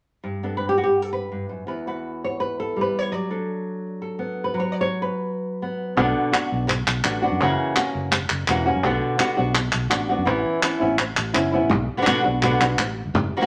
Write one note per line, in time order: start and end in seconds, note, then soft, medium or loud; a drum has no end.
0.24 1.31 G2 medium
0.43 2.27 B3 soft
0.43 0.77 D4 soft
0.43 0.57 A4 soft
0.57 0.68 B4 medium
0.69 0.76 G4 medium
0.78 0.85 F#4 medium
0.84 1.02 G4 medium
1.02 1.12 A4 medium
1.13 1.67 B4 medium
1.32 1.49 G2 soft
1.49 1.66 F#2 soft
1.67 3.11 E2 medium
1.67 1.87 B4 soft
1.87 3.30 F#4 soft
1.87 2.24 B4 soft
2.24 2.39 C#5 medium
2.40 2.59 B4 medium
2.60 2.81 A4 medium
2.76 3.10 G3 soft
2.81 2.99 B4 medium
2.99 3.12 C#5 medium
3.12 4.54 F#3 medium
3.12 3.86 D5 medium
3.30 4.63 D4 soft
3.30 4.01 A4 soft
4.02 4.53 A4 soft
4.19 4.63 B3 soft
4.44 4.59 B4 medium
4.54 5.95 F#3 medium
4.60 4.72 C#5 medium
4.72 4.80 D5 medium
4.81 5.03 C#5 medium
5.02 5.82 B4 medium
5.62 5.96 B3 soft
5.97 6.12 B1 loud
5.97 6.32 B2 medium
5.97 6.32 D3 medium
5.97 6.32 B3 medium
5.97 6.32 D4 medium
5.97 6.31 F#4 medium
6.32 6.67 B3 soft
6.32 6.67 D4 medium
6.32 6.67 F#4 soft
6.32 clap medium
6.52 6.81 B1 medium
6.67 muted nylon-string guitar stroke medium
6.67 clap medium
6.87 7.02 B1 medium
6.87 clap medium
7.04 7.27 A1 medium
7.04 7.22 D3 medium
7.04 7.22 B3 medium
7.04 7.22 D4 medium
7.04 7.21 F#4 medium
7.04 clap medium
7.22 7.41 B3 soft
7.22 7.40 D4 soft
7.22 7.40 F#4 medium
7.32 7.39 F#2 medium
7.41 7.56 F#1 medium
7.41 7.76 C#3 medium
7.41 7.76 E3 medium
7.41 7.76 A#3 medium
7.41 7.75 C#4 medium
7.41 7.75 F#4 medium
7.76 8.11 A#3 medium
7.76 8.11 C#4 medium
7.76 8.11 F#4 medium
7.76 clap medium
7.95 8.24 F#1 medium
8.11 muted nylon-string guitar stroke medium
8.11 clap medium
8.30 8.45 F#1 medium
8.30 clap medium
8.48 8.70 E1 medium
8.48 8.65 E3 medium
8.48 8.66 A#3 medium
8.48 8.66 C#4 medium
8.48 8.65 F#4 medium
8.48 clap medium
8.66 8.84 A#3 soft
8.66 8.83 C#4 soft
8.66 8.83 F#4 soft
8.76 8.82 F#2 medium
8.84 8.99 B1 loud
8.84 9.19 B2 medium
8.84 9.17 D3 medium
8.84 9.18 B3 medium
8.84 9.18 D4 medium
8.84 9.19 F#4 medium
8.84 clap soft
9.18 9.36 D3 medium
9.18 9.36 B3 medium
9.18 9.36 D4 medium
9.18 9.36 F#4 medium
9.18 clap medium
9.37 9.68 B1 medium
9.37 9.54 B3 soft
9.37 9.53 D4 soft
9.37 9.54 F#4 medium
9.54 muted nylon-string guitar stroke medium
9.54 clap medium
9.72 9.88 B1 medium
9.72 clap medium
9.90 10.13 A1 medium
9.90 10.09 B3 soft
9.90 10.08 D4 soft
9.90 10.08 F#4 medium
9.90 clap medium
10.09 10.25 B3 soft
10.09 10.26 D4 soft
10.09 10.26 F#4 medium
10.18 10.25 F#2 medium
10.25 10.42 A1 loud
10.25 10.61 E3 medium
10.25 10.62 B3 medium
10.25 10.62 C#4 medium
10.25 10.62 E4 medium
10.25 clap soft
10.62 10.80 E3 medium
10.62 10.80 B3 medium
10.62 10.80 C#4 medium
10.62 10.79 E4 medium
10.62 clap medium
10.80 11.12 A1 medium
10.80 10.97 B3 soft
10.80 10.97 C#4 soft
10.80 10.98 E4 medium
10.98 muted nylon-string guitar stroke medium
10.98 clap medium
11.17 11.33 A1 medium
11.17 clap medium
11.34 11.58 F#1 medium
11.34 11.52 B3 soft
11.34 11.52 C#4 soft
11.34 11.51 E4 soft
11.34 clap medium
11.52 11.71 B3 soft
11.52 11.71 C#4 soft
11.52 11.70 E4 medium
11.62 11.70 A1 medium
11.70 11.87 B1 loud
11.70 muted nylon-string guitar stroke medium
11.70 clap soft
11.97 12.00 D3 medium
11.97 12.01 B3 medium
11.97 12.01 D4 medium
11.97 12.02 F#4 medium
12.02 12.05 D3 medium
12.02 12.06 B3 medium
12.02 12.06 D4 medium
12.02 12.06 F#4 medium
12.06 12.24 B2 medium
12.06 12.24 D3 medium
12.06 12.24 B3 medium
12.06 12.24 D4 medium
12.06 12.23 F#4 loud
12.06 clap medium
12.24 12.55 B1 medium
12.24 12.42 B3 soft
12.24 12.42 D4 soft
12.24 12.42 F#4 medium
12.42 12.60 B2 medium
12.42 12.60 D3 medium
12.42 12.60 B3 medium
12.42 12.60 D4 medium
12.42 12.59 F#4 medium
12.42 clap medium
12.61 12.76 B1 medium
12.61 12.78 B3 soft
12.61 12.78 D4 soft
12.61 12.78 F#4 soft
12.61 clap medium
12.79 13.01 A1 medium
12.79 muted nylon-string guitar stroke medium
12.79 clap medium
13.05 13.13 G1 medium
13.14 13.29 F#1 loud
13.14 muted nylon-string guitar stroke medium
13.14 clap soft
13.37 13.40 E3 medium
13.37 13.40 A#3 medium
13.37 13.41 C#4 medium
13.37 13.41 F#4 medium
13.41 13.44 E3 medium
13.41 13.45 A#3 medium
13.41 13.45 C#4 medium
13.41 13.45 F#4 medium